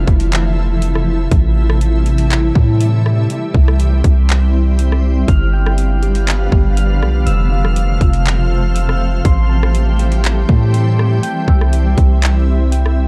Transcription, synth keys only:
5.29 F6
5.53 G5
6.02 G4
6.53 G3
6.77 F6
7.26 E6
7.52 F5
8.01 F4
8.50 F3
8.75 E6
9.25 C6
9.49 A5
10.00 G4
10.49 A3
10.73 C6
11.23 G5
11.49 E5
11.98 G4
12.47 C4
12.72 G5

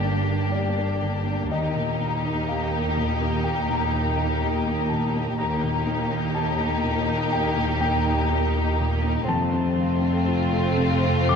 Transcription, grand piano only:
Already playing: G2 D3 A#3 D4 G4 G5 A5
0.05 A#3
0.30 D4
0.52 G4 D5
0.78 A#3
1.01 D3
1.27 A#3
1.52 D#2 D#5
1.75 A#2
2.01 A#3
2.25 D#4
2.49 G4 F5
2.74 A#3
2.97 A#2
3.21 A#3
3.44 D#2 G5
3.70 A#2
3.93 A#3
4.17 D#4
4.42 G4
4.67 A#3
4.89 A#2 A5
5.16 A#3
5.38 D#2 A#5
5.64 A#2
5.87 A#3
6.11 D#4
6.35 G4 A5
6.60 A#3
6.84 A#2
7.07 A#3
7.32 D#2 G5
7.57 A#2
7.81 A#3 G5
8.06 D#4
8.30 G4
8.55 A#3
8.80 A#2
9.04 A#3
9.28 F2 A5
9.53 C3
9.78 A3
10.01 C4
10.27 F4
10.52 A3
10.77 C3
11.04 A3
11.29 F2 D6

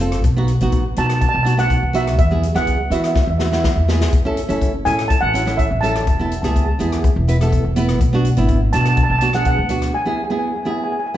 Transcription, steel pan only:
0.98 A5
1.06 A5
1.13 A5
1.21 A5
1.29 A5
1.36 A5
1.43 A5
1.59 F#5
1.95 E5
2.19 E5
2.56 F#5
2.92 E5
3.00 E5
3.07 E5
3.15 E5
3.22 E5
3.30 E5
3.38 E5
3.45 E5
3.53 E5
3.60 E5
3.67 E5
3.76 E5
4.85 G#5
5.08 A5
5.21 F#5
5.57 E5
5.81 A5
5.89 A5
5.97 A5
6.03 A5
6.10 A5
6.18 A5
6.26 A5
6.33 A5
6.42 A5
6.49 A5
6.56 A5
6.65 A5
8.73 A5
8.81 A5
8.89 A5
8.97 A5
9.03 A5
9.11 A5
9.19 A5
9.35 F#5
9.47 F#5
9.94 G#5
10.02 G#5
10.09 G#5
10.17 G#5
10.24 G#5
10.31 G#5
10.39 G#5
10.47 G#5
10.56 G#5
10.63 G#5
10.71 G#5
10.78 G#5
10.84 G#5
10.92 G#5
11.00 G#5
11.07 G#5

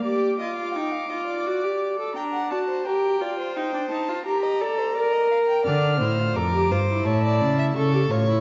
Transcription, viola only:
0.05 G4
0.40 F4
0.75 D#4
1.10 F4
1.46 F#4
1.63 G4
1.98 A4
2.16 D4
2.51 F#4
2.86 G4
3.21 F4
3.56 D#4
3.73 D4
3.90 D#4
4.08 F4
4.26 G4
4.61 A4
4.97 A#4
5.67 D4
6.01 E4
6.19 F4
6.36 A4
6.53 G4
6.71 F4
6.89 E4
7.76 A4
7.94 G4
8.11 F4
8.29 E4

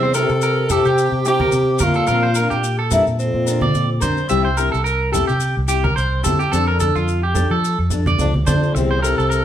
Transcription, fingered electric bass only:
Already playing: C3
0.30 C3
0.85 C3
1.12 C3
1.53 C3
2.08 A#2
2.51 A#2
3.06 A#2
3.34 A#2
3.75 A#2
4.31 C2
4.74 C2
5.29 C3
5.57 C2
5.97 C2
6.53 F2
6.96 F2
7.51 F3
7.79 F2
8.19 C#2
8.75 C2
9.18 C2

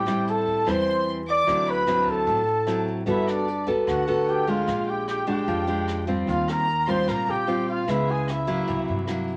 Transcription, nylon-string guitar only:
Already playing: A2
0.06 G3 C4 E4
0.66 E3 G3 C4 E4
1.47 D3 F#3 C4 E4
1.87 F#3 C4 E4
2.27 A2
2.67 F#3 C4 E4
3.06 G3 B3 F#4 A4
3.67 B3 F#4 A4
3.87 D3
4.08 B3 F#4 A4
4.47 G#3 D4 G4
4.67 A#2
5.27 G#3 D4 G4
5.48 F3
5.67 G#3 D4 G4
6.07 G3 C4 F4
6.27 D#3
6.87 G3 C4 F4
7.08 A#2
7.47 G3 C4 F4
7.87 C#3 G#3 B3 E4
8.47 F#3 A#3 E4
8.68 C3
9.08 F#3 A#3 E4

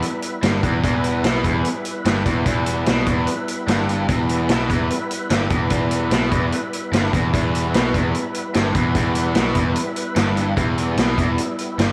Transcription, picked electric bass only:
0.43 G1
0.63 E1
0.83 E1
1.24 B1
1.44 E1
2.05 G1
2.26 E1
2.46 E1
2.87 B1
3.06 E1
3.67 G1
4.08 E1
4.49 B1
4.69 E1
5.30 G1
5.50 E1
5.70 E1
6.11 B1
6.31 E1
6.92 G1
7.13 E1
7.34 E1
7.74 B1
7.94 E1
8.56 G1
8.75 E1
8.95 E1
9.35 B1
9.55 E1
10.16 G1
10.57 E1
10.97 B1
11.18 E1
11.78 G1

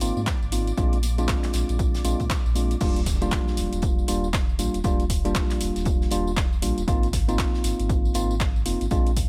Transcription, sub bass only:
0.01 G#1
0.17 G#2
0.42 G#1
0.78 A#1
1.54 A#1
1.69 A#1
2.05 A#1
2.20 A#2
2.45 A#1
2.81 D#1
3.57 D#1
3.73 D#1
4.08 D#1
4.59 A#1
4.74 D#1
4.84 D#1
5.61 D#1
5.76 D#1
6.12 D#1
6.62 A#1
6.78 D#1
6.88 G#1
7.64 G#1
7.79 G#1
8.15 G#1
8.66 F1
8.81 G#1
8.91 A#1

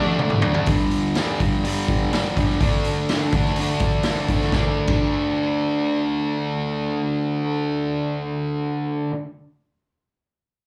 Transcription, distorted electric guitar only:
Already playing: D3 A3 D4
0.20 D3 A3 D4
0.45 D3 A3 D4
0.69 G2 D3 G3
1.19 G2 D3 G3
1.41 G2 D3 G3
1.65 G2 D3 G3
2.12 G2 D3 G3
2.38 G2 D3 G3
2.62 D3 A3 D4
3.11 D3 A3 D4
3.36 D3 A3 D4
3.60 D3 A3 D4
4.07 D3 A3 D4
4.30 D3 A3 D4
4.53 D3 A3 D4
4.88 D3 A3
4.93 D4

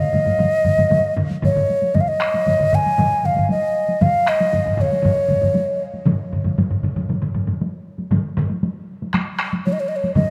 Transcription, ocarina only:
Already playing: D#5
1.45 C#5
1.95 D#5
2.01 F5
2.08 D#5
2.75 G#5
3.26 F5
3.51 D#5
4.02 F5
4.28 D#5
4.81 C#5
9.66 C#5
9.73 D#5
9.80 C#5
9.88 D#5
9.96 C#5
10.15 D#5

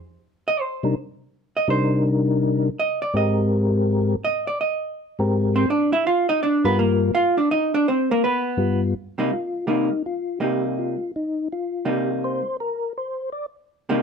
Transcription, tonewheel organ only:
0.83 C3 G3 D4 D#4 A#4
1.68 C3 G3 D4 D#4 A#4
3.14 G#2 G#3 C4 G4 A#4
5.19 G#2 G#3 C4 G4 A#4
6.64 G2 G3 F4 A#4
8.57 G2 G3 B3 F4
9.33 F4
9.70 D#4
10.06 F4
10.44 G4
10.79 F4
11.16 D#4
11.53 F4
11.90 G4
12.24 C5
12.60 A#4
12.98 C5
13.32 D5

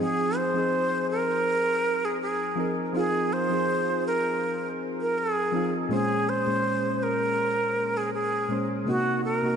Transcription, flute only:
0.00 G#4
0.37 C5
1.11 A#4
2.05 G#4
2.22 G#4
2.96 G#4
3.33 C5
4.07 A#4
5.01 A#4
5.18 G#4
5.92 G#4
6.29 C5
7.03 A#4
7.97 G#4
8.14 G#4
8.88 F#4
9.25 A#4

